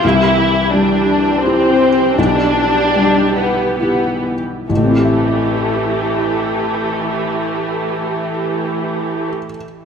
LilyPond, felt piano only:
\new Staff \with { instrumentName = "Felt piano" } { \time 3/4 \key a \minor \tempo 4 = 70 c,4 g4 <e' g'>4 | b,,4 g4 <e' g'>4 | <a,, a, c' e' g' e''>2.~ | <a,, a, c' e' g' e''>2. | }